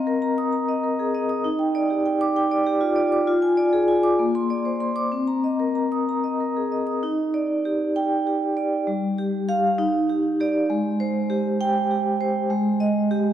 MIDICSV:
0, 0, Header, 1, 2, 480
1, 0, Start_track
1, 0, Key_signature, -3, "minor"
1, 0, Tempo, 610376
1, 1139, Time_signature, 6, 3, 24, 8
1, 3537, Tempo, 627615
1, 5472, Key_signature, -3, "major"
1, 6417, Tempo, 604839
1, 10439, End_track
2, 0, Start_track
2, 0, Title_t, "Vibraphone"
2, 0, Program_c, 0, 11
2, 0, Control_c, 0, 64, 127
2, 0, Note_on_c, 0, 60, 49
2, 0, Note_on_c, 0, 75, 42
2, 0, Note_on_c, 0, 82, 42
2, 55, Note_on_c, 0, 70, 42
2, 133, Note_off_c, 0, 75, 0
2, 173, Note_off_c, 0, 82, 0
2, 173, Note_on_c, 0, 82, 47
2, 248, Note_off_c, 0, 70, 0
2, 299, Note_on_c, 0, 87, 49
2, 366, Note_off_c, 0, 82, 0
2, 413, Note_on_c, 0, 82, 46
2, 489, Note_off_c, 0, 87, 0
2, 540, Note_on_c, 0, 75, 45
2, 606, Note_off_c, 0, 82, 0
2, 657, Note_on_c, 0, 70, 37
2, 731, Note_off_c, 0, 75, 0
2, 781, Note_on_c, 0, 68, 38
2, 850, Note_off_c, 0, 70, 0
2, 900, Note_off_c, 0, 68, 0
2, 901, Note_on_c, 0, 75, 46
2, 1017, Note_on_c, 0, 87, 48
2, 1092, Note_off_c, 0, 75, 0
2, 1107, Note_off_c, 0, 60, 0
2, 1136, Note_on_c, 0, 63, 55
2, 1138, Note_off_c, 0, 87, 0
2, 1154, Control_c, 0, 64, 0
2, 1250, Note_on_c, 0, 79, 47
2, 1257, Control_c, 0, 64, 127
2, 1376, Note_on_c, 0, 74, 48
2, 1444, Note_off_c, 0, 79, 0
2, 1496, Note_on_c, 0, 67, 44
2, 1567, Note_off_c, 0, 74, 0
2, 1617, Note_on_c, 0, 79, 53
2, 1687, Note_off_c, 0, 67, 0
2, 1738, Note_on_c, 0, 86, 64
2, 1807, Note_off_c, 0, 79, 0
2, 1859, Note_on_c, 0, 79, 54
2, 1927, Note_off_c, 0, 86, 0
2, 1978, Note_on_c, 0, 74, 55
2, 2046, Note_off_c, 0, 79, 0
2, 2095, Note_on_c, 0, 67, 47
2, 2165, Note_off_c, 0, 74, 0
2, 2208, Note_on_c, 0, 65, 46
2, 2283, Note_off_c, 0, 67, 0
2, 2327, Note_on_c, 0, 74, 48
2, 2328, Note_off_c, 0, 65, 0
2, 2455, Note_on_c, 0, 86, 50
2, 2519, Note_off_c, 0, 74, 0
2, 2535, Note_off_c, 0, 63, 0
2, 2572, Note_off_c, 0, 86, 0
2, 2573, Note_on_c, 0, 65, 58
2, 2585, Control_c, 0, 64, 0
2, 2692, Note_on_c, 0, 80, 51
2, 2730, Control_c, 0, 64, 127
2, 2810, Note_on_c, 0, 74, 51
2, 2883, Note_off_c, 0, 80, 0
2, 2932, Note_on_c, 0, 68, 47
2, 3003, Note_off_c, 0, 74, 0
2, 3052, Note_on_c, 0, 80, 52
2, 3126, Note_off_c, 0, 68, 0
2, 3172, Note_on_c, 0, 86, 59
2, 3246, Note_off_c, 0, 80, 0
2, 3276, Note_off_c, 0, 65, 0
2, 3295, Note_off_c, 0, 86, 0
2, 3296, Note_on_c, 0, 58, 56
2, 3307, Control_c, 0, 64, 0
2, 3421, Note_on_c, 0, 84, 47
2, 3447, Control_c, 0, 64, 127
2, 3540, Note_on_c, 0, 74, 42
2, 3611, Note_off_c, 0, 84, 0
2, 3655, Note_on_c, 0, 72, 40
2, 3728, Note_off_c, 0, 74, 0
2, 3771, Note_on_c, 0, 84, 45
2, 3845, Note_off_c, 0, 72, 0
2, 3888, Note_on_c, 0, 86, 57
2, 3963, Note_off_c, 0, 84, 0
2, 3991, Note_off_c, 0, 58, 0
2, 4010, Note_off_c, 0, 86, 0
2, 4011, Note_on_c, 0, 60, 47
2, 4025, Control_c, 0, 64, 0
2, 4132, Note_on_c, 0, 82, 42
2, 4136, Control_c, 0, 64, 127
2, 4257, Note_on_c, 0, 75, 41
2, 4326, Note_off_c, 0, 82, 0
2, 4378, Note_on_c, 0, 70, 39
2, 4450, Note_off_c, 0, 75, 0
2, 4497, Note_on_c, 0, 82, 41
2, 4572, Note_off_c, 0, 70, 0
2, 4623, Note_on_c, 0, 87, 48
2, 4692, Note_off_c, 0, 82, 0
2, 4753, Note_on_c, 0, 82, 40
2, 4816, Note_off_c, 0, 87, 0
2, 4869, Note_on_c, 0, 75, 38
2, 4942, Note_off_c, 0, 82, 0
2, 4994, Note_on_c, 0, 70, 33
2, 5062, Note_off_c, 0, 75, 0
2, 5119, Note_on_c, 0, 68, 34
2, 5185, Note_off_c, 0, 70, 0
2, 5236, Note_off_c, 0, 68, 0
2, 5236, Note_on_c, 0, 75, 36
2, 5349, Note_on_c, 0, 87, 38
2, 5428, Note_off_c, 0, 75, 0
2, 5441, Note_off_c, 0, 60, 0
2, 5471, Note_off_c, 0, 87, 0
2, 5473, Note_on_c, 0, 63, 54
2, 5487, Control_c, 0, 64, 0
2, 5635, Control_c, 0, 64, 127
2, 5710, Note_on_c, 0, 74, 47
2, 5950, Note_on_c, 0, 67, 49
2, 6091, Note_off_c, 0, 74, 0
2, 6184, Note_on_c, 0, 79, 65
2, 6326, Note_off_c, 0, 67, 0
2, 6422, Note_on_c, 0, 67, 43
2, 6564, Note_off_c, 0, 79, 0
2, 6659, Note_on_c, 0, 74, 47
2, 6807, Note_off_c, 0, 67, 0
2, 6870, Note_off_c, 0, 63, 0
2, 6900, Note_on_c, 0, 55, 55
2, 6901, Note_off_c, 0, 74, 0
2, 6914, Control_c, 0, 64, 0
2, 7027, Control_c, 0, 64, 127
2, 7148, Note_on_c, 0, 67, 47
2, 7378, Note_off_c, 0, 67, 0
2, 7387, Note_on_c, 0, 67, 49
2, 7387, Note_on_c, 0, 77, 67
2, 7598, Note_off_c, 0, 55, 0
2, 7600, Note_off_c, 0, 67, 0
2, 7601, Note_off_c, 0, 77, 0
2, 7625, Note_on_c, 0, 63, 63
2, 7636, Control_c, 0, 64, 0
2, 7751, Control_c, 0, 64, 127
2, 7871, Note_on_c, 0, 67, 44
2, 8106, Note_off_c, 0, 67, 0
2, 8115, Note_on_c, 0, 67, 45
2, 8120, Note_on_c, 0, 74, 64
2, 8326, Note_off_c, 0, 63, 0
2, 8327, Note_off_c, 0, 67, 0
2, 8330, Note_off_c, 0, 74, 0
2, 8350, Note_on_c, 0, 56, 61
2, 8358, Control_c, 0, 64, 0
2, 8498, Control_c, 0, 64, 127
2, 8589, Note_on_c, 0, 72, 53
2, 8826, Note_on_c, 0, 67, 55
2, 8973, Note_off_c, 0, 72, 0
2, 9070, Note_on_c, 0, 79, 71
2, 9211, Note_off_c, 0, 67, 0
2, 9311, Note_on_c, 0, 67, 44
2, 9451, Note_off_c, 0, 79, 0
2, 9547, Note_on_c, 0, 72, 52
2, 9689, Note_off_c, 0, 67, 0
2, 9753, Note_off_c, 0, 56, 0
2, 9780, Note_on_c, 0, 56, 65
2, 9784, Note_off_c, 0, 72, 0
2, 9797, Control_c, 0, 64, 0
2, 9947, Control_c, 0, 64, 127
2, 10019, Note_on_c, 0, 75, 55
2, 10263, Note_on_c, 0, 67, 59
2, 10404, Note_off_c, 0, 75, 0
2, 10439, Note_off_c, 0, 56, 0
2, 10439, Note_off_c, 0, 67, 0
2, 10439, End_track
0, 0, End_of_file